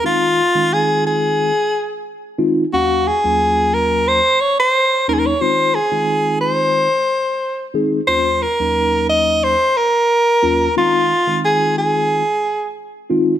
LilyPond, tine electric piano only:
\new Staff \with { instrumentName = "Tine electric piano" } { \time 4/4 \key f \phrygian \tempo 4 = 90 <ees aes c' ees' f'>8 r16 <ees aes c' ees' f'>4. r4 r16 <ees aes c' ees' f'>16 r16 | <ees, ges bes des' f''>8 r16 <ees, ges bes des' f'>4. r4 r16 <ees, ges bes des' ees'>16 r16 | <ees aes c' ees' f'>8 r16 <ees aes c' ees' f'>4. r4 r16 <ees aes c' ees' aes'>16 r16 | <ees, ges bes des' f'>8 r16 <ees, ges bes des' ees'>4. r4 r16 <ees, ges bes des' f'>16 r16 |
<ees aes c' ees' f'>8 r16 <ees aes c' ees' f'>4. r4 r16 <ees aes c' ees' f'>16 r16 | }